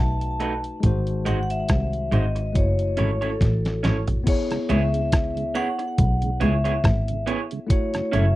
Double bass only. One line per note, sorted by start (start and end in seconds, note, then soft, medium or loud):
0.00 0.61 B1 medium
0.84 1.25 G#1 loud
1.27 1.49 G#1 medium
1.70 2.10 C2 medium
2.13 2.53 G#1 medium
2.56 2.96 F#1 medium
2.99 3.21 G#1 medium
3.41 3.82 A1 medium
3.84 4.07 G#1 medium
4.70 5.52 C#2 loud
5.99 6.39 B1 medium
6.42 6.64 C#2 medium
6.84 7.25 G#1 medium
8.14 8.36 F#1 medium